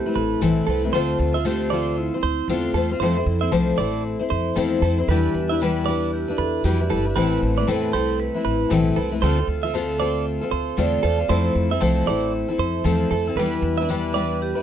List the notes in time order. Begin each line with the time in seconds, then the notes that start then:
Already playing: G4
0.06 A3 C4 E4 B4
0.15 A1 A4 B4
0.41 B1 A2 E3 A3 C4 E4 A4 B4, tambourine
0.67 C2 A3 C4 E4 A4 B4
0.84 A3 C4 E4 B4
0.93 D2 D3 A3 C4 F4 C5
1.19 D2
1.34 C4 F4 C5 E5
1.45 D3 A3 C4 F4 G4 C5, tambourine
1.70 A3 C4 F4 C5 D5
1.98 E4
2.14 C4 C5
2.23 D2 C5
2.48 E2 D3 A3 C4 F4 C5, tambourine
2.74 E2 A3 C4 F4 A4 C5
2.91 C4 F4 C5
3.00 F2 F3 A3 C4 E4 A4 C5
3.17 C4 E4 C5
3.26 F2
3.41 C4 E4 C5 E5
3.52 C2 F3 A3 C4 E4 C5, tambourine
3.78 A1 A3 C4 E4 C5 D5
4.19 C4 E4 C5
4.30 F2 C5
4.56 E2 F3 A3 C4 E4 C5, tambourine
4.82 F2 A3 C4 E4 A4 C5
4.98 C4 E4 C5
5.08 E2 E3 G3 D4 E4 G4 B4
5.35 E2
5.49 D4 E4 B4 E5
5.60 E3 G3 D4 E4 B4, tambourine
5.86 G3 D4 E4 B4 D5
6.13 G4
6.28 D4 E4 B4
6.38 E2 A4 B4
6.61 F2 E3 G3 D4 F#4, tambourine
6.65 E4 G4 B4
6.80 D4 E4 B4
6.89 G1 G3 D4 E4 A4 B4
7.05 D4 E4 B4
7.16 A1 A2 E3 A3 C4 E4 B4
7.42 A1
7.58 A3 C4 E4 B4 D5
7.67 E2 A2 E3 A3 C4 E4 A4 B4, tambourine
7.93 C2 A3 C4 E4 A4 B4 C5
8.20 B4
8.35 A3 C4 E4 B4
8.45 A1 B4
8.70 B1 A2 E3 A3 C4 E4 B4, tambourine
8.96 C2 A3 C4 E4 A4 B4
9.11 A3 C4 E4 B4
9.21 D2 D3 A3 C4 F4 A4 C5
9.37 C4 F4 A4
9.47 D2
9.63 C4 F4 A4 E5
9.74 D3 A3 C4 F4 A4, tambourine
9.99 A3 C4 F4 A4 D5
10.41 C4 F4 A4
10.51 D2 C5
10.77 E2 D3 A3 C4 F4 A4 D5, tambourine
11.02 E2 A3 C4 F4 A4
11.18 C4 F4 A4
11.28 F2 F3 A3 C4 E4 A4 C5
11.55 F2
11.71 C4 E4 A4 E5
11.80 C2 F3 A3 C4 E4 A4 C5, tambourine
12.07 A1 A3 C4 E4 A4 D5
12.49 C4 E4 A4
12.58 F2 C5
12.84 E2 F3 A3 C4 E4 A4, tambourine
13.10 F2 A3 C4 E4 A4
13.27 C4 E4 A4
13.36 E2 E3 G3 D4 E4 B4
13.62 E2
13.78 E4 B4 E5
13.82 D4
13.89 E3 G3 D4 E4 B4, tambourine
14.14 G3 D4 E4 B4 D5
14.42 G4
14.55 D4 E4 B4